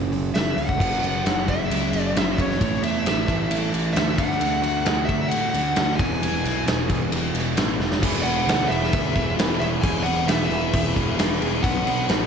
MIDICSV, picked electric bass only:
0, 0, Header, 1, 2, 480
1, 0, Start_track
1, 0, Tempo, 451467
1, 848, Time_signature, 4, 2, 24, 8
1, 13041, End_track
2, 0, Start_track
2, 0, Title_t, "Picked electric bass"
2, 0, Program_c, 0, 34
2, 117, Note_on_c, 0, 30, 77
2, 322, Note_off_c, 0, 30, 0
2, 364, Note_on_c, 0, 30, 68
2, 566, Note_off_c, 0, 30, 0
2, 607, Note_on_c, 0, 37, 75
2, 808, Note_off_c, 0, 37, 0
2, 849, Note_on_c, 0, 30, 86
2, 1078, Note_off_c, 0, 30, 0
2, 1091, Note_on_c, 0, 30, 72
2, 1319, Note_off_c, 0, 30, 0
2, 1330, Note_on_c, 0, 30, 88
2, 1559, Note_off_c, 0, 30, 0
2, 1581, Note_on_c, 0, 30, 70
2, 1805, Note_off_c, 0, 30, 0
2, 1814, Note_on_c, 0, 37, 79
2, 2039, Note_off_c, 0, 37, 0
2, 2045, Note_on_c, 0, 30, 84
2, 2277, Note_off_c, 0, 30, 0
2, 2292, Note_on_c, 0, 30, 73
2, 2750, Note_off_c, 0, 30, 0
2, 2774, Note_on_c, 0, 33, 84
2, 2991, Note_off_c, 0, 33, 0
2, 2997, Note_on_c, 0, 40, 81
2, 3232, Note_off_c, 0, 40, 0
2, 3246, Note_on_c, 0, 33, 78
2, 3477, Note_off_c, 0, 33, 0
2, 3486, Note_on_c, 0, 33, 82
2, 3717, Note_off_c, 0, 33, 0
2, 3724, Note_on_c, 0, 33, 73
2, 3956, Note_off_c, 0, 33, 0
2, 3967, Note_on_c, 0, 33, 83
2, 4197, Note_off_c, 0, 33, 0
2, 4209, Note_on_c, 0, 38, 76
2, 4438, Note_off_c, 0, 38, 0
2, 4445, Note_on_c, 0, 38, 79
2, 4671, Note_off_c, 0, 38, 0
2, 4677, Note_on_c, 0, 38, 88
2, 4912, Note_off_c, 0, 38, 0
2, 4923, Note_on_c, 0, 38, 78
2, 5155, Note_off_c, 0, 38, 0
2, 5169, Note_on_c, 0, 38, 87
2, 5399, Note_off_c, 0, 38, 0
2, 5408, Note_on_c, 0, 38, 76
2, 5638, Note_off_c, 0, 38, 0
2, 5659, Note_on_c, 0, 45, 74
2, 5883, Note_off_c, 0, 45, 0
2, 5892, Note_on_c, 0, 38, 77
2, 6120, Note_off_c, 0, 38, 0
2, 6132, Note_on_c, 0, 38, 75
2, 6360, Note_off_c, 0, 38, 0
2, 6367, Note_on_c, 0, 28, 73
2, 6597, Note_off_c, 0, 28, 0
2, 6610, Note_on_c, 0, 28, 95
2, 6839, Note_off_c, 0, 28, 0
2, 6852, Note_on_c, 0, 35, 86
2, 7080, Note_off_c, 0, 35, 0
2, 7087, Note_on_c, 0, 28, 85
2, 7317, Note_off_c, 0, 28, 0
2, 7337, Note_on_c, 0, 28, 85
2, 7562, Note_off_c, 0, 28, 0
2, 7571, Note_on_c, 0, 28, 86
2, 7799, Note_off_c, 0, 28, 0
2, 7809, Note_on_c, 0, 28, 89
2, 8029, Note_off_c, 0, 28, 0
2, 8035, Note_on_c, 0, 33, 82
2, 8271, Note_off_c, 0, 33, 0
2, 8290, Note_on_c, 0, 28, 80
2, 8519, Note_off_c, 0, 28, 0
2, 8536, Note_on_c, 0, 28, 102
2, 8743, Note_off_c, 0, 28, 0
2, 8771, Note_on_c, 0, 28, 76
2, 8980, Note_off_c, 0, 28, 0
2, 9007, Note_on_c, 0, 38, 93
2, 9218, Note_off_c, 0, 38, 0
2, 9247, Note_on_c, 0, 28, 84
2, 9458, Note_off_c, 0, 28, 0
2, 9496, Note_on_c, 0, 38, 91
2, 9703, Note_off_c, 0, 38, 0
2, 9739, Note_on_c, 0, 28, 89
2, 9944, Note_off_c, 0, 28, 0
2, 9974, Note_on_c, 0, 28, 75
2, 10182, Note_off_c, 0, 28, 0
2, 10208, Note_on_c, 0, 28, 89
2, 10419, Note_off_c, 0, 28, 0
2, 10456, Note_on_c, 0, 28, 95
2, 10663, Note_off_c, 0, 28, 0
2, 10679, Note_on_c, 0, 28, 88
2, 10893, Note_off_c, 0, 28, 0
2, 10932, Note_on_c, 0, 28, 85
2, 11141, Note_off_c, 0, 28, 0
2, 11160, Note_on_c, 0, 28, 87
2, 11375, Note_off_c, 0, 28, 0
2, 11415, Note_on_c, 0, 28, 86
2, 11623, Note_off_c, 0, 28, 0
2, 11659, Note_on_c, 0, 28, 102
2, 11865, Note_off_c, 0, 28, 0
2, 11890, Note_on_c, 0, 28, 77
2, 12100, Note_off_c, 0, 28, 0
2, 12135, Note_on_c, 0, 28, 87
2, 12344, Note_off_c, 0, 28, 0
2, 12370, Note_on_c, 0, 35, 97
2, 12581, Note_off_c, 0, 35, 0
2, 12598, Note_on_c, 0, 35, 83
2, 12814, Note_off_c, 0, 35, 0
2, 12837, Note_on_c, 0, 33, 86
2, 13041, Note_off_c, 0, 33, 0
2, 13041, End_track
0, 0, End_of_file